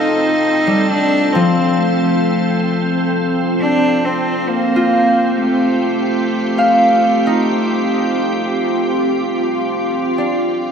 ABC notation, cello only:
X:1
M:4/4
L:1/8
Q:1/4=67
K:Fmix
V:1 name="Cello"
E2 D C A,3 z | D C B,2 A,4- | A,6 z2 |]